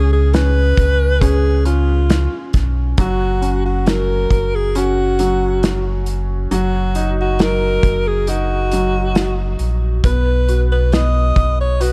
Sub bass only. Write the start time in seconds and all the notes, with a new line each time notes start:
Already playing: C#2
0.78 C#2
2.54 B1
2.98 F#1
4.30 F#1
6.51 F#1
7.83 F#1
9.60 A#1
10.04 B1
11.36 B1